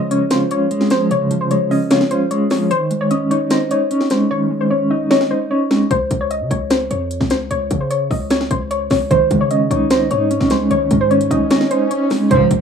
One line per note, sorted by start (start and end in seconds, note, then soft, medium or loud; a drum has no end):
0.00 0.51 C#3 medium
0.00 0.71 F3 medium
0.00 0.70 G#3 medium
0.11 0.50 C#4 loud
0.11 0.26 C#5 medium
0.11 closed hi-hat medium
0.31 1.31 F4 medium
0.31 0.46 C5 medium
0.31 snare loud
0.31 closed hi-hat medium
0.51 1.51 C#4 medium
0.51 0.89 C#5 medium
0.51 closed hi-hat medium
0.71 1.50 G#3 medium
0.71 closed hi-hat medium
0.81 snare medium
0.90 1.30 F3 medium
0.90 1.06 C5 medium
0.90 snare loud
0.90 closed hi-hat medium
1.11 2.11 C#3 medium
1.11 1.39 C#5 medium
1.11 closed hi-hat medium
1.31 2.31 F3 medium
1.31 closed hi-hat medium
1.41 1.49 C5 medium
1.51 2.30 G#3 medium
1.51 1.66 C#5 medium
1.51 closed hi-hat medium
1.71 2.10 C#4 loud
1.71 1.86 D#5 medium
1.71 open hi-hat medium
1.91 2.71 F4 medium
1.91 2.06 C#5 medium
1.91 snare loud
1.91 closed hi-hat medium
2.01 snare medium
2.11 2.71 C#4 medium
2.11 2.26 C5 medium
2.11 closed hi-hat medium
2.31 2.71 G#3 loud
2.31 2.46 C#5 medium
2.31 closed hi-hat medium
2.50 2.71 F3 medium
2.50 2.66 C#5 medium
2.50 snare loud
2.50 open hi-hat medium
2.71 3.71 D#3 medium
2.71 2.99 C5 loud
2.71 closed hi-hat medium
2.91 3.91 G#3 medium
2.91 closed hi-hat medium
3.01 3.09 C#5 medium
3.11 3.90 C#4 medium
3.11 3.26 D#5 medium
3.11 closed hi-hat medium
3.31 3.70 D#4 loud
3.31 3.46 C#5 medium
3.31 closed hi-hat medium
3.50 3.66 C5 medium
3.50 4.51 D#5 medium
3.50 snare loud
3.50 closed hi-hat medium
3.71 4.71 D#4 medium
3.71 4.09 C#5 medium
3.71 closed hi-hat medium
3.91 4.69 C#4 medium
3.91 closed hi-hat medium
4.01 snare medium
4.10 4.50 G#3 medium
4.10 4.26 C5 medium
4.10 snare loud
4.10 closed hi-hat medium
4.31 5.31 D#3 medium
4.31 4.59 C#5 loud
4.51 5.51 G#3 medium
4.61 4.69 C5 medium
4.70 5.49 C#4 medium
4.70 4.86 C#5 medium
4.91 5.29 D#4 loud
4.91 5.06 D#5 medium
5.11 5.26 C#5 medium
5.11 5.91 D#5 medium
5.11 snare loud
5.21 snare medium
5.31 5.91 D#4 medium
5.31 5.46 C5 medium
5.51 5.91 C#4 medium
5.51 5.88 C#5 medium
5.71 5.91 G#3 medium
5.71 snare loud
5.91 6.10 C#2 loud
5.91 6.19 C5 loud
5.91 kick loud
5.91 closed hi-hat medium
6.11 6.42 C#2 loud
6.11 kick medium
6.11 closed hi-hat medium
6.21 6.29 C#5 medium
6.31 6.46 D#5 medium
6.31 closed hi-hat medium
6.41 6.50 C#3 loud
6.51 6.89 C#2 loud
6.51 6.66 C#5 medium
6.51 kick medium
6.51 closed hi-hat medium
6.70 6.86 C5 medium
6.70 snare loud
6.70 closed hi-hat medium
6.91 7.20 F2 loud
6.91 7.28 C#5 medium
6.91 closed hi-hat medium
7.11 closed hi-hat medium
7.21 7.50 C#2 loud
7.21 kick loud
7.21 snare medium
7.30 7.46 C5 medium
7.30 snare medium
7.30 closed hi-hat medium
7.51 7.70 C#2 loud
7.51 7.79 C#5 medium
7.51 closed hi-hat medium
7.71 8.09 C#3 loud
7.71 kick medium
7.71 closed hi-hat medium
7.81 7.88 C5 medium
7.91 8.06 C#5 medium
7.91 closed hi-hat medium
8.11 8.49 C#2 loud
8.11 8.26 D#5 medium
8.11 kick medium
8.11 open hi-hat medium
8.30 8.46 C#5 medium
8.30 snare loud
8.30 closed hi-hat medium
8.41 snare medium
8.51 8.89 C#2 loud
8.51 8.66 C5 medium
8.51 kick medium
8.51 closed hi-hat medium
8.71 8.86 C#5 medium
8.71 closed hi-hat medium
8.90 9.10 C#2 loud
8.90 9.06 C#5 medium
8.90 kick medium
8.90 snare loud
8.90 open hi-hat medium
9.11 9.30 C#2 loud
9.11 10.11 D#3 medium
9.11 9.39 C5 loud
9.11 kick loud
9.11 closed hi-hat medium
9.11 swell medium
9.31 9.69 C#3 loud
9.31 10.31 G#3 medium
9.31 kick loud
9.31 closed hi-hat medium
9.41 9.49 C#5 medium
9.51 10.30 C#4 medium
9.51 9.66 D#5 medium
9.51 closed hi-hat medium
9.71 10.09 C#2 loud
9.71 10.10 D#4 loud
9.71 9.86 C#5 medium
9.71 kick medium
9.71 closed hi-hat medium
9.90 10.06 C5 medium
9.90 10.91 D#5 medium
9.90 snare loud
9.90 closed hi-hat medium
10.11 10.40 G#2 loud
10.11 11.11 D#4 medium
10.11 10.48 C#5 medium
10.11 closed hi-hat medium
10.31 11.09 C#4 medium
10.31 closed hi-hat medium
10.41 10.70 C#2 loud
10.41 kick loud
10.41 snare medium
10.50 10.89 G#3 medium
10.50 10.66 C5 medium
10.50 snare loud
10.50 closed hi-hat medium
10.71 10.90 C#2 loud
10.71 11.71 D#3 medium
10.71 10.99 C#5 loud
10.71 closed hi-hat medium
10.91 11.29 G#2 loud
10.91 11.91 G#3 medium
10.91 kick medium
10.91 closed hi-hat medium
11.01 11.09 C5 medium
11.11 11.90 C#4 medium
11.11 11.26 C#5 medium
11.11 closed hi-hat soft
11.21 closed hi-hat medium
11.31 11.50 C#2 loud
11.31 11.70 D#4 loud
11.31 11.46 D#5 medium
11.31 kick medium
11.31 closed hi-hat medium
11.51 11.66 C#5 medium
11.51 12.31 D#5 medium
11.51 snare loud
11.51 closed hi-hat medium
11.61 snare medium
11.71 12.31 D#4 medium
11.71 11.86 C5 medium
11.71 closed hi-hat medium
11.91 12.31 C#4 medium
11.91 12.28 C#5 medium
11.91 closed hi-hat medium
12.10 12.31 G#3 medium
12.10 snare medium
12.10 open hi-hat medium
12.31 12.50 C#2 loud
12.31 12.59 C#2 loud
12.31 12.59 G#2 loud
12.31 12.59 F3 loud
12.31 12.59 C5 loud
12.31 kick loud
12.31 closed hi-hat medium
12.51 12.61 C#2 loud
12.51 kick loud
12.51 closed hi-hat medium